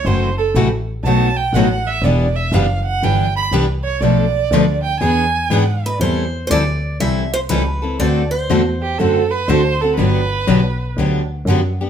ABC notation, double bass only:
X:1
M:4/4
L:1/8
Q:"Swing" 1/4=121
K:Em
V:1 name="Double bass" clef=bass
F,,,2 A,,,2 B,,,2 A,,,2 | E,,,2 F,,,2 G,,,2 C,,2 | B,,,2 D,,2 E,,2 ^G,,2 | E,,2 D,,2 C,,2 ^C,,2 |
D,,2 E,,2 F,,2 D,,2 | G,,,2 B,,,2 D,,2 F,,2 |]